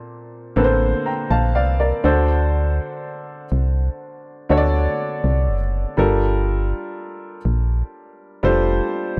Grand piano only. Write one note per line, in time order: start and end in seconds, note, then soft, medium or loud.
0.00 2.05 A#2 medium
0.00 0.56 A#3 medium
0.00 0.57 C4 medium
0.00 0.57 A4 medium
0.00 1.56 D5 medium
0.56 1.61 D3 medium
0.56 1.61 A#3 medium
0.56 1.61 C4 medium
0.56 1.06 A4 medium
0.56 0.63 B4 medium
0.64 1.09 C5 medium
1.06 1.29 G5 soft
1.06 1.29 A#5 medium
1.31 1.54 F5 medium
1.31 1.54 A5 medium
1.55 1.78 D5 medium
1.55 1.78 F5 medium
1.80 2.26 A#4 medium
1.80 2.26 D5 medium
2.04 3.44 D3 medium
2.04 3.44 D4 medium
2.04 3.44 F#4 medium
2.04 3.44 A4 medium
2.04 3.44 C5 medium
4.49 5.54 D3 medium
4.49 5.55 D4 medium
4.49 5.55 F#4 medium
4.49 5.55 A4 medium
4.49 4.57 C#5 medium
4.57 5.59 D5 medium
5.97 7.37 G3 medium
5.97 7.37 D4 medium
5.97 7.37 F4 medium
5.97 7.38 A4 medium
5.97 7.38 A#4 medium
8.43 9.20 G3 medium
8.43 9.20 D4 medium
8.43 9.20 F4 medium
8.43 9.20 A4 medium
8.43 9.20 C5 medium